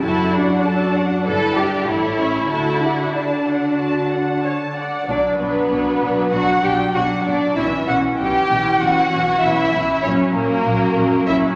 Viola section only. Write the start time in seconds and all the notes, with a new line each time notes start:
0.03 F#4 A4
0.33 D4 F#4
0.65 F#4 A4
0.96 D4 F#4
1.27 E4 B4
1.58 D4 D5
1.89 E4 A4
2.19 C#4 C#5
2.52 F#4 A4
2.83 D4 F#4
3.15 G4
3.48 F#4
4.45 C#5
4.77 D5
5.09 F#3 D4
5.41 F#3 D4
5.72 F#3 D4
6.02 F#3 D4
6.34 F#3 D4
6.65 F#3 D4
6.96 F#3 D4
7.27 F#3 D4
7.58 E3 C#4
7.88 E3 C#4
8.19 E3 C#4
8.51 E3 C#4
8.80 E3 C#4
9.12 E3 C#4
9.43 E3 C#4
9.73 E3 C#4
10.05 F#3 C#4
10.36 F#3 C#4
10.66 F#3 C#4
10.97 F#3 C#4
11.28 F#3 C#4